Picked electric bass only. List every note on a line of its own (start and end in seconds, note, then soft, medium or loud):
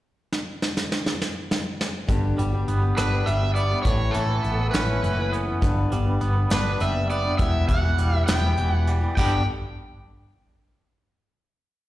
2.09 2.32 G1 medium
2.39 2.62 G1 medium
2.68 2.91 G1 medium
2.98 3.21 G1 medium
3.27 3.73 G1 medium
3.85 4.09 A1 medium
4.16 4.39 A1 medium
4.45 4.68 A1 medium
4.74 4.97 A1 medium
5.03 5.50 F#1 medium
5.63 5.86 G1 medium
5.93 6.16 G1 medium
6.22 6.45 G1 medium
6.51 6.74 G1 medium
6.81 7.27 F#1 medium
7.40 7.63 E1 medium
7.69 7.92 E1 medium
7.99 8.22 E1 medium
8.29 8.52 E1 medium
8.58 9.05 E1 medium
9.18 9.45 G1 medium